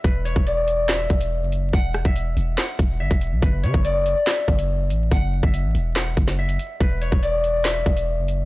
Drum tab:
HH |x-x-x-x---xx--x-|x---x-x-xxx--xx-|x-x-x-x---xx--x-|x---x-x-x-x--xx-|
CP |--------x-------|--------x-------|--------x-------|--------x-------|
SD |--------o-------|--r-----o-------|--------o-------|--------o--o----|
BD |o--o------o-----|o--o------o--o--|o--o------o-----|o--o------o-----|

HH |x-x-x-x---xx--x-|
CP |--------x-------|
SD |--------o-------|
BD |o--o------o-----|